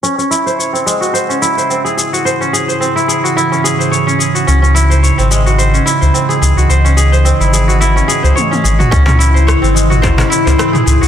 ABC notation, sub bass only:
X:1
M:4/4
L:1/16
Q:"Swing 16ths" 1/4=108
K:C#m
V:1 name="Sub bass" clef=bass
z16 | z16 | C,,4 z G,,,4 z2 C,, z2 C,, C,, | C,,4 z G,,,4 z2 C,, z2 G,,, z |
C,,4 z G,,,4 z2 C,, z2 C,, C,, |]